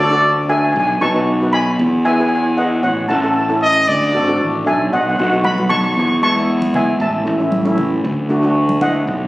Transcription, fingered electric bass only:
0, 0, Header, 1, 2, 480
1, 0, Start_track
1, 0, Tempo, 519931
1, 699, Time_signature, 4, 2, 24, 8
1, 8562, End_track
2, 0, Start_track
2, 0, Title_t, "Fingered electric bass"
2, 0, Program_c, 0, 33
2, 0, Note_on_c, 0, 38, 105
2, 663, Note_off_c, 0, 38, 0
2, 699, Note_on_c, 0, 35, 98
2, 916, Note_off_c, 0, 35, 0
2, 937, Note_on_c, 0, 35, 98
2, 1622, Note_off_c, 0, 35, 0
2, 1655, Note_on_c, 0, 40, 109
2, 2582, Note_off_c, 0, 40, 0
2, 2624, Note_on_c, 0, 33, 91
2, 2839, Note_off_c, 0, 33, 0
2, 2864, Note_on_c, 0, 33, 102
2, 3546, Note_off_c, 0, 33, 0
2, 3592, Note_on_c, 0, 38, 108
2, 3804, Note_off_c, 0, 38, 0
2, 3833, Note_on_c, 0, 32, 83
2, 4044, Note_off_c, 0, 32, 0
2, 4071, Note_on_c, 0, 33, 82
2, 4283, Note_off_c, 0, 33, 0
2, 4319, Note_on_c, 0, 35, 82
2, 4527, Note_off_c, 0, 35, 0
2, 4555, Note_on_c, 0, 35, 92
2, 4766, Note_off_c, 0, 35, 0
2, 4794, Note_on_c, 0, 35, 100
2, 5471, Note_off_c, 0, 35, 0
2, 5508, Note_on_c, 0, 40, 105
2, 6428, Note_off_c, 0, 40, 0
2, 6462, Note_on_c, 0, 33, 101
2, 6679, Note_off_c, 0, 33, 0
2, 6710, Note_on_c, 0, 33, 100
2, 7389, Note_off_c, 0, 33, 0
2, 7428, Note_on_c, 0, 38, 106
2, 8348, Note_off_c, 0, 38, 0
2, 8376, Note_on_c, 0, 35, 92
2, 8562, Note_off_c, 0, 35, 0
2, 8562, End_track
0, 0, End_of_file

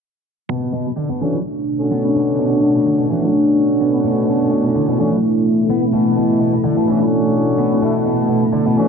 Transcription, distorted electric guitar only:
0, 0, Header, 1, 2, 480
1, 0, Start_track
1, 0, Key_signature, 2, "minor"
1, 0, Tempo, 472441
1, 510, Time_signature, 4, 2, 24, 8
1, 9025, End_track
2, 0, Start_track
2, 0, Title_t, "Distorted electric guitar"
2, 0, Program_c, 0, 30
2, 510, Note_on_c, 0, 47, 91
2, 739, Note_off_c, 0, 47, 0
2, 750, Note_on_c, 0, 47, 92
2, 858, Note_off_c, 0, 47, 0
2, 989, Note_on_c, 0, 50, 74
2, 1097, Note_off_c, 0, 50, 0
2, 1113, Note_on_c, 0, 47, 69
2, 1223, Note_off_c, 0, 47, 0
2, 1229, Note_on_c, 0, 52, 70
2, 1337, Note_off_c, 0, 52, 0
2, 1947, Note_on_c, 0, 59, 75
2, 2056, Note_off_c, 0, 59, 0
2, 2190, Note_on_c, 0, 47, 69
2, 2419, Note_off_c, 0, 47, 0
2, 2429, Note_on_c, 0, 47, 94
2, 2656, Note_off_c, 0, 47, 0
2, 2668, Note_on_c, 0, 47, 95
2, 2777, Note_off_c, 0, 47, 0
2, 2908, Note_on_c, 0, 50, 78
2, 3017, Note_off_c, 0, 50, 0
2, 3034, Note_on_c, 0, 47, 69
2, 3144, Note_off_c, 0, 47, 0
2, 3149, Note_on_c, 0, 52, 69
2, 3257, Note_off_c, 0, 52, 0
2, 3871, Note_on_c, 0, 59, 78
2, 3978, Note_off_c, 0, 59, 0
2, 4111, Note_on_c, 0, 47, 73
2, 4339, Note_off_c, 0, 47, 0
2, 4349, Note_on_c, 0, 47, 89
2, 4576, Note_off_c, 0, 47, 0
2, 4588, Note_on_c, 0, 47, 93
2, 4697, Note_off_c, 0, 47, 0
2, 4830, Note_on_c, 0, 50, 78
2, 4938, Note_off_c, 0, 50, 0
2, 4958, Note_on_c, 0, 47, 69
2, 5066, Note_off_c, 0, 47, 0
2, 5070, Note_on_c, 0, 52, 69
2, 5178, Note_off_c, 0, 52, 0
2, 5790, Note_on_c, 0, 59, 78
2, 5897, Note_off_c, 0, 59, 0
2, 6028, Note_on_c, 0, 47, 73
2, 6255, Note_off_c, 0, 47, 0
2, 6267, Note_on_c, 0, 47, 97
2, 6497, Note_off_c, 0, 47, 0
2, 6509, Note_on_c, 0, 47, 95
2, 6617, Note_off_c, 0, 47, 0
2, 6749, Note_on_c, 0, 50, 75
2, 6857, Note_off_c, 0, 50, 0
2, 6875, Note_on_c, 0, 47, 72
2, 6984, Note_off_c, 0, 47, 0
2, 6989, Note_on_c, 0, 52, 70
2, 7097, Note_off_c, 0, 52, 0
2, 7709, Note_on_c, 0, 59, 76
2, 7817, Note_off_c, 0, 59, 0
2, 7950, Note_on_c, 0, 47, 70
2, 8179, Note_off_c, 0, 47, 0
2, 8190, Note_on_c, 0, 47, 89
2, 8419, Note_off_c, 0, 47, 0
2, 8429, Note_on_c, 0, 47, 89
2, 8537, Note_off_c, 0, 47, 0
2, 8667, Note_on_c, 0, 50, 77
2, 8776, Note_off_c, 0, 50, 0
2, 8796, Note_on_c, 0, 47, 72
2, 8905, Note_off_c, 0, 47, 0
2, 8911, Note_on_c, 0, 52, 70
2, 9018, Note_off_c, 0, 52, 0
2, 9025, End_track
0, 0, End_of_file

